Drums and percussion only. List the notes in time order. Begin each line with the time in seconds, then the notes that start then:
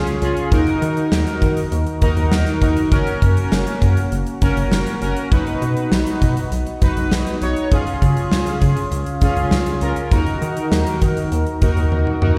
0.07 closed hi-hat
0.22 closed hi-hat
0.37 closed hi-hat
0.52 kick, closed hi-hat
0.67 closed hi-hat
0.82 closed hi-hat
0.97 closed hi-hat
1.12 snare
1.27 closed hi-hat
1.42 kick, closed hi-hat
1.57 closed hi-hat
1.72 closed hi-hat
1.87 closed hi-hat
2.02 kick, closed hi-hat
2.17 closed hi-hat
2.32 snare
2.47 closed hi-hat
2.62 kick, closed hi-hat
2.77 closed hi-hat
2.92 kick, closed hi-hat
3.07 closed hi-hat
3.22 kick, closed hi-hat
3.37 closed hi-hat
3.52 snare
3.67 closed hi-hat
3.82 kick, closed hi-hat
3.97 closed hi-hat
4.12 closed hi-hat
4.27 closed hi-hat
4.42 kick, closed hi-hat
4.57 closed hi-hat
4.72 snare
4.87 closed hi-hat
5.02 closed hi-hat
5.17 closed hi-hat
5.32 kick, closed hi-hat
5.47 closed hi-hat
5.62 closed hi-hat
5.77 closed hi-hat
5.92 snare
6.07 closed hi-hat
6.22 kick, closed hi-hat
6.37 closed hi-hat
6.52 closed hi-hat
6.67 closed hi-hat
6.82 kick, closed hi-hat
6.97 closed hi-hat
7.11 snare
7.27 closed hi-hat
7.42 closed hi-hat
7.56 closed hi-hat
7.72 kick, closed hi-hat
7.87 closed hi-hat
8.02 kick, closed hi-hat
8.17 closed hi-hat
8.32 snare
8.46 closed hi-hat
8.62 kick, closed hi-hat
8.77 closed hi-hat
8.92 closed hi-hat
9.06 closed hi-hat
9.21 kick, closed hi-hat
9.36 closed hi-hat
9.51 snare
9.66 closed hi-hat
9.81 closed hi-hat
9.96 closed hi-hat
10.11 kick, closed hi-hat
10.27 closed hi-hat
10.42 closed hi-hat
10.57 closed hi-hat
10.72 snare
10.87 closed hi-hat
11.02 kick, closed hi-hat
11.17 closed hi-hat
11.32 closed hi-hat
11.47 closed hi-hat
11.62 kick, closed hi-hat
11.77 closed hi-hat
11.92 high tom
12.07 mid tom
12.22 mid tom